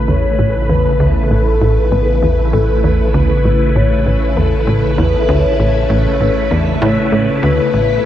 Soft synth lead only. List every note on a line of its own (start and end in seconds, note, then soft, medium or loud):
0.08 0.71 C#5 loud
0.69 1.29 B4 medium
1.30 1.88 A4 medium
1.91 2.34 B4 loud
2.53 3.16 A4 loud
3.14 3.77 B4 loud
3.75 4.38 C#5 loud
4.37 5.00 A4 loud
4.98 5.30 B4 loud
5.29 6.53 C#5 loud
6.51 6.83 D5 loud
6.81 7.43 C#5 loud
7.43 8.05 B4 loud